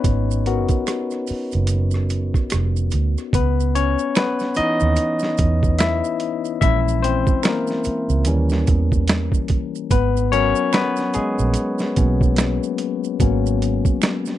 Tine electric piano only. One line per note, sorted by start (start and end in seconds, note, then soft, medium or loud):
0.00 0.46 B3 medium
0.00 3.35 C#4 medium
0.00 3.35 D#4 medium
0.00 2.47 B4 medium
0.00 3.34 C#5 medium
0.00 3.35 D#5 medium
0.46 1.65 B3 medium
0.46 1.66 F#4 medium
0.46 1.65 A#4 medium
3.35 3.72 B3 medium
3.35 3.76 B4 medium
3.75 4.13 C#4 medium
3.75 4.17 C#5 loud
4.16 4.54 B3 medium
4.16 4.58 B4 medium
4.56 5.13 E3 medium
4.56 5.14 B3 soft
4.56 5.76 D#4 medium
4.56 5.84 D#5 loud
5.79 6.58 E4 medium
5.79 6.60 E5 medium
6.61 7.81 E3 soft
6.61 7.81 G#3 soft
6.61 7.81 C#4 medium
6.61 6.81 E4 medium
6.61 6.80 E5 loud
7.02 7.42 C4 medium
7.02 7.45 C5 medium
7.43 8.64 A#3 medium
7.43 8.63 A#4 medium
8.26 9.46 E3 medium
8.26 9.46 G3 medium
8.26 9.46 C#4 medium
9.91 10.30 B3 medium
9.91 10.33 B4 medium
10.32 11.51 F#3 medium
10.32 10.73 B3 medium
10.32 11.52 C#4 medium
10.32 11.51 A#4 medium
10.32 10.70 C#5 loud
10.73 11.12 B3 medium
10.73 11.15 B4 loud
11.15 14.38 G#3 medium
11.15 14.38 G#4 medium
11.97 12.34 F#3 soft
11.97 12.34 A#3 soft
11.97 12.34 B3 soft
11.97 12.34 C#4 medium
13.20 14.38 F#3 medium
13.20 14.38 A#3 soft
13.20 14.38 B3 soft
13.20 14.38 C#4 medium